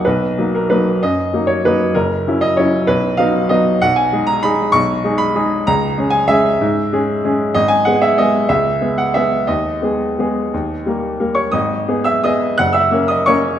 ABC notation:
X:1
M:3/4
L:1/8
Q:1/4=189
K:Cblyd
V:1 name="Grand piano"
=B3 ^A B2 | ^d3 _d =B2 | B3 e d2 | =B2 f2 ^d2 |
[K:G#m] f g2 a b2 | c'3 b3 | a3 g e2- | e4- e z |
d g f e d2 | e3 f e2 | d6- | d4- d [cc'] |
[dd']3 [ee'] [dd']2 | [ff'] [ee']2 [dd'] [cc']2 |]
V:2 name="Grand piano"
=B,,,2 [^F,^A,^D]2 [F,A,D]2 | ^F,,2 [^F,^A,^D]2 [F,A,D]2 | G,,,2 [G,D_F]2 [G,DF]2 | =B,,,2 [^F,=B,^D]2 [F,B,D]2 |
[K:G#m] B,,,2 [G,DG]2 [G,DG]2 | B,,,2 [G,DG]2 [G,DG]2 | C,,2 [G,CG]2 [G,CG]2 | G,,2 [G,CG]2 [G,CG]2 |
G,,,2 [G,B,G]2 [G,B,G]2 | C,,2 [G,B,G]2 [G,B,G]2 | D,,2 [G,B,G]2 [G,B,G]2 | D,,2 [=G,A,A]2 [G,A,A]2 |
G,,,2 [B,G]2 [B,G]2 | F,,,2 [A,CA]2 [A,CA]2 |]